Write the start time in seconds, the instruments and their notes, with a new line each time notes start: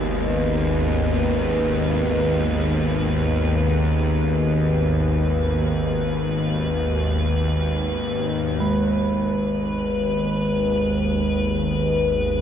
Already playing: synth drone G#1 D#2, singing bowl C#3 C#4 G#4, analog synth pad B3 G#4 D#5, ambient pad B4
8.60 synth drone G#1 D#2, singing bowl G#3, ambient pad B4